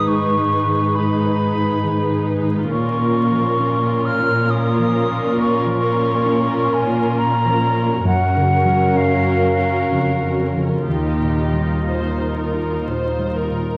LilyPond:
<<
  \new Staff \with { instrumentName = "Flute" } { \time 3/4 \key bes \dorian \tempo 4 = 67 des'''4 ces'''4. r8 | des'''4. f'''8 ees'''4 | des'''4. aes''8 bes''4 | ges''4 f''4. r8 |
ees''2 r4 | }
  \new Staff \with { instrumentName = "Violin section" } { \time 3/4 \key bes \dorian ces''2. | bes'2.~ | bes'2. | bes'2. |
g'4 c''8 bes'8 c''8 bes'8 | }
  \new Staff \with { instrumentName = "Viola section" } { \time 3/4 \key bes \dorian <ees' aes'>2. | <des' f'>2.~ | <des' f'>2. | <des' ges'>2. |
<ees' f'>2. | }
  \new Staff \with { instrumentName = "Grand piano" } { \clef bass \time 3/4 \key bes \dorian \tuplet 3/2 { <aes, ees>8 aes8 ees8 ees'8 ces''8 ees'8 ees8 aes8 ees8 } | \tuplet 3/2 { bes,8 bes8 f8 des'8 bes'8 des'8 bes8 f8 bes8 } | \tuplet 3/2 { bes,8 f8 bes8 des'8 bes'8 des'8 bes8 f8 bes8 } | \tuplet 3/2 { ges,8 des8 ges8 des'8 bes'8 des'8 des8 ges'8 des8 } |
\tuplet 3/2 { ees,8 bes,8 g8 f'8 bes'8 f'8 bes,8 g8 bes,8 } | }
  \new Staff \with { instrumentName = "Cello section" } { \clef bass \time 3/4 \key bes \dorian aes,2. | bes,2.~ | bes,2. | ges,2 f,4 |
ees,2. | }
>>